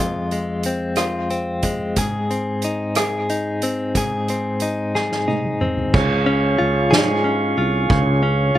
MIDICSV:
0, 0, Header, 1, 5, 480
1, 0, Start_track
1, 0, Tempo, 658617
1, 1435, Time_signature, 6, 3, 24, 8
1, 6255, End_track
2, 0, Start_track
2, 0, Title_t, "Tonewheel organ"
2, 0, Program_c, 0, 16
2, 4326, Note_on_c, 0, 68, 63
2, 4327, Note_on_c, 0, 85, 72
2, 4328, Note_on_c, 0, 77, 60
2, 4329, Note_on_c, 0, 73, 58
2, 6255, Note_off_c, 0, 68, 0
2, 6255, Note_off_c, 0, 73, 0
2, 6255, Note_off_c, 0, 77, 0
2, 6255, Note_off_c, 0, 85, 0
2, 6255, End_track
3, 0, Start_track
3, 0, Title_t, "Clean electric guitar"
3, 0, Program_c, 1, 27
3, 0, Note_on_c, 1, 41, 58
3, 0, Note_on_c, 1, 56, 43
3, 0, Note_on_c, 1, 60, 43
3, 1, Note_on_c, 1, 65, 43
3, 231, Note_off_c, 1, 56, 0
3, 233, Note_on_c, 1, 56, 41
3, 479, Note_off_c, 1, 60, 0
3, 482, Note_on_c, 1, 60, 49
3, 704, Note_off_c, 1, 65, 0
3, 712, Note_on_c, 1, 65, 50
3, 948, Note_off_c, 1, 60, 0
3, 951, Note_on_c, 1, 60, 42
3, 1196, Note_off_c, 1, 56, 0
3, 1199, Note_on_c, 1, 56, 45
3, 1434, Note_off_c, 1, 41, 0
3, 1435, Note_off_c, 1, 65, 0
3, 1437, Note_on_c, 1, 44, 63
3, 1446, Note_on_c, 1, 68, 53
3, 1677, Note_off_c, 1, 56, 0
3, 1680, Note_off_c, 1, 60, 0
3, 1680, Note_on_c, 1, 60, 45
3, 1928, Note_on_c, 1, 63, 52
3, 2162, Note_off_c, 1, 68, 0
3, 2165, Note_on_c, 1, 68, 53
3, 2395, Note_off_c, 1, 63, 0
3, 2404, Note_on_c, 1, 63, 46
3, 2637, Note_off_c, 1, 60, 0
3, 2646, Note_on_c, 1, 60, 51
3, 2881, Note_off_c, 1, 44, 0
3, 2888, Note_on_c, 1, 44, 67
3, 2892, Note_off_c, 1, 68, 0
3, 2895, Note_on_c, 1, 68, 58
3, 3124, Note_off_c, 1, 60, 0
3, 3132, Note_on_c, 1, 60, 47
3, 3358, Note_off_c, 1, 63, 0
3, 3367, Note_on_c, 1, 63, 54
3, 3607, Note_off_c, 1, 68, 0
3, 3610, Note_on_c, 1, 68, 56
3, 3837, Note_off_c, 1, 63, 0
3, 3846, Note_on_c, 1, 63, 51
3, 4081, Note_off_c, 1, 60, 0
3, 4090, Note_on_c, 1, 60, 49
3, 4330, Note_off_c, 1, 44, 0
3, 4374, Note_off_c, 1, 63, 0
3, 4376, Note_off_c, 1, 60, 0
3, 4565, Note_on_c, 1, 61, 57
3, 4799, Note_on_c, 1, 65, 67
3, 5031, Note_off_c, 1, 68, 0
3, 5034, Note_on_c, 1, 68, 70
3, 5269, Note_off_c, 1, 61, 0
3, 5278, Note_on_c, 1, 61, 57
3, 5514, Note_off_c, 1, 65, 0
3, 5523, Note_on_c, 1, 65, 56
3, 5761, Note_on_c, 1, 49, 78
3, 5987, Note_off_c, 1, 61, 0
3, 5996, Note_on_c, 1, 61, 61
3, 6225, Note_off_c, 1, 65, 0
3, 6255, Note_off_c, 1, 49, 0
3, 6255, Note_off_c, 1, 61, 0
3, 6255, Note_off_c, 1, 68, 0
3, 6255, End_track
4, 0, Start_track
4, 0, Title_t, "Fretless electric bass"
4, 0, Program_c, 2, 35
4, 4328, Note_on_c, 2, 37, 102
4, 4777, Note_off_c, 2, 37, 0
4, 4812, Note_on_c, 2, 37, 83
4, 5032, Note_off_c, 2, 37, 0
4, 5051, Note_on_c, 2, 44, 95
4, 5494, Note_off_c, 2, 44, 0
4, 5521, Note_on_c, 2, 36, 85
4, 5744, Note_off_c, 2, 36, 0
4, 5758, Note_on_c, 2, 37, 101
4, 6205, Note_off_c, 2, 37, 0
4, 6232, Note_on_c, 2, 37, 102
4, 6255, Note_off_c, 2, 37, 0
4, 6255, End_track
5, 0, Start_track
5, 0, Title_t, "Drums"
5, 227, Note_on_c, 9, 42, 39
5, 300, Note_off_c, 9, 42, 0
5, 461, Note_on_c, 9, 42, 50
5, 533, Note_off_c, 9, 42, 0
5, 697, Note_on_c, 9, 42, 70
5, 706, Note_on_c, 9, 37, 80
5, 770, Note_off_c, 9, 42, 0
5, 779, Note_off_c, 9, 37, 0
5, 949, Note_on_c, 9, 42, 35
5, 1022, Note_off_c, 9, 42, 0
5, 1184, Note_on_c, 9, 42, 57
5, 1190, Note_on_c, 9, 36, 74
5, 1257, Note_off_c, 9, 42, 0
5, 1262, Note_off_c, 9, 36, 0
5, 1430, Note_on_c, 9, 42, 63
5, 1433, Note_on_c, 9, 36, 80
5, 1503, Note_off_c, 9, 42, 0
5, 1506, Note_off_c, 9, 36, 0
5, 1680, Note_on_c, 9, 42, 40
5, 1753, Note_off_c, 9, 42, 0
5, 1908, Note_on_c, 9, 42, 54
5, 1981, Note_off_c, 9, 42, 0
5, 2151, Note_on_c, 9, 42, 67
5, 2160, Note_on_c, 9, 37, 84
5, 2224, Note_off_c, 9, 42, 0
5, 2233, Note_off_c, 9, 37, 0
5, 2401, Note_on_c, 9, 42, 39
5, 2474, Note_off_c, 9, 42, 0
5, 2636, Note_on_c, 9, 42, 58
5, 2709, Note_off_c, 9, 42, 0
5, 2879, Note_on_c, 9, 36, 82
5, 2880, Note_on_c, 9, 42, 64
5, 2952, Note_off_c, 9, 36, 0
5, 2953, Note_off_c, 9, 42, 0
5, 3121, Note_on_c, 9, 42, 40
5, 3194, Note_off_c, 9, 42, 0
5, 3351, Note_on_c, 9, 42, 54
5, 3424, Note_off_c, 9, 42, 0
5, 3606, Note_on_c, 9, 38, 42
5, 3679, Note_off_c, 9, 38, 0
5, 3727, Note_on_c, 9, 38, 41
5, 3800, Note_off_c, 9, 38, 0
5, 3846, Note_on_c, 9, 48, 57
5, 3919, Note_off_c, 9, 48, 0
5, 3966, Note_on_c, 9, 47, 48
5, 4039, Note_off_c, 9, 47, 0
5, 4088, Note_on_c, 9, 45, 75
5, 4161, Note_off_c, 9, 45, 0
5, 4205, Note_on_c, 9, 43, 64
5, 4278, Note_off_c, 9, 43, 0
5, 4328, Note_on_c, 9, 36, 108
5, 4328, Note_on_c, 9, 49, 86
5, 4401, Note_off_c, 9, 36, 0
5, 4401, Note_off_c, 9, 49, 0
5, 4567, Note_on_c, 9, 51, 42
5, 4640, Note_off_c, 9, 51, 0
5, 4799, Note_on_c, 9, 51, 42
5, 4872, Note_off_c, 9, 51, 0
5, 5036, Note_on_c, 9, 51, 69
5, 5046, Note_on_c, 9, 38, 108
5, 5109, Note_off_c, 9, 51, 0
5, 5118, Note_off_c, 9, 38, 0
5, 5281, Note_on_c, 9, 51, 37
5, 5353, Note_off_c, 9, 51, 0
5, 5520, Note_on_c, 9, 51, 43
5, 5593, Note_off_c, 9, 51, 0
5, 5756, Note_on_c, 9, 51, 66
5, 5757, Note_on_c, 9, 36, 108
5, 5829, Note_off_c, 9, 51, 0
5, 5830, Note_off_c, 9, 36, 0
5, 5991, Note_on_c, 9, 51, 43
5, 6064, Note_off_c, 9, 51, 0
5, 6227, Note_on_c, 9, 51, 40
5, 6255, Note_off_c, 9, 51, 0
5, 6255, End_track
0, 0, End_of_file